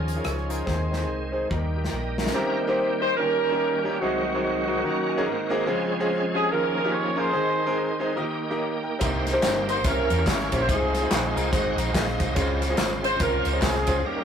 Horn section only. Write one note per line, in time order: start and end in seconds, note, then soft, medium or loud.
0.00 0.63 C#4 medium
0.00 0.63 F4 medium
0.00 0.25 A#4 medium
0.25 0.50 C#5 medium
0.50 1.30 D#4 medium
0.50 1.30 G#4 medium
0.50 1.34 C5 medium
3.02 3.17 C5 loud
3.17 3.97 C#4 medium
3.17 3.82 G4 medium
3.17 3.80 A#4 loud
3.84 4.01 G4 medium
4.00 4.43 D#4 medium
4.00 4.41 F#4 medium
4.42 5.48 D#4 medium
4.42 5.47 F#4 medium
6.35 6.51 G#4 medium
6.51 7.31 C#4 medium
6.51 7.31 F4 medium
6.51 6.93 A#4 loud
6.92 7.18 C#5 loud
7.17 7.98 D#4 medium
7.17 7.98 G#4 medium
7.17 8.01 C5 loud
9.69 9.84 C5 loud
9.85 10.65 C#4 medium
9.85 10.26 E4 medium
9.85 10.26 A#4 loud
10.27 10.66 E4 medium
10.27 10.66 A#4 medium
10.27 10.61 C#5 loud
10.62 10.70 C5 loud
10.70 11.50 D#4 medium
10.70 11.50 F4 medium
10.70 11.49 G#4 medium
13.05 13.20 C5 loud
13.21 13.61 F4 medium
13.21 13.62 A#4 loud
13.62 14.01 C4 medium
13.62 14.01 F4 medium
13.62 14.04 G#4 loud
14.04 14.24 A#3 medium
14.04 14.24 C#4 medium
14.04 14.24 G4 medium